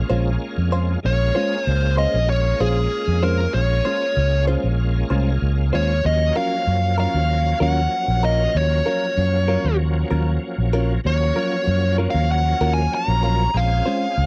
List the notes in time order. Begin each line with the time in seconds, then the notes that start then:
Already playing: G#3 A#3 C#4 F4
0.10 A#1 G#3 C#4 F4 C5
0.58 F2
0.72 G#3 C#4 F4 C5
1.03 A#1 G#3 A#3 C#4 F4 C#5
1.35 G#3 C#4 F4 C5
1.66 C#2 C5
1.97 G#3 C#4 F4 C5 D#5
2.14 A#1
2.30 C#5
2.60 A#1 G#3 C#4 F4 G#4 C5
3.08 F2
3.23 G#3 C#4 F4 A#4 C5
3.54 A#1 C#5
3.85 G#3 C#4 F4 C5
4.17 C#2
4.47 G#3 C#4 F4 C5
4.64 A#1
5.10 C2 G#3 C#4 F4 C5
5.42 C#2
5.73 D#2 G#3 C#4 F4 C5 C#5
6.03 D#2 F3 F#3 A#3 C#4 D#5
6.36 F#3 C#4 F4 A#4 F5
6.67 F#2
6.98 F#3 C#4 F4 A#4 F5
7.14 D#2
7.60 D#2 F#3 C#4 F4 A#4 F#5
8.08 A#1
8.23 F#3 C#4 F4 A#4 D#5
8.55 D#2 C#5
8.86 F#3 C#4 F4 A#4
9.17 F#2
9.48 F#3 C#4 F4 A#4
9.65 D#2
10.11 D#2 F#3 C#4 F4 A#4
10.58 A#1
10.73 F#3 C#4 F4 A#4
11.04 D#2 F3 F#3 A#3 C#4 C#5
11.36 F#3 C#4 F4 A#4
11.68 F#2
11.98 F#3 C#4 F4 A#4
12.10 D#2 F5
12.31 F#5
12.61 D#2 F#3 C#4 F4 A#4
12.74 G#5
12.95 A#5
13.08 A#1
13.23 F#3 C#4 F4 A#4
13.54 A#1 G#3 C4 C#4 F4 F5
13.86 G#3 C#4 F4 C5
14.18 C#2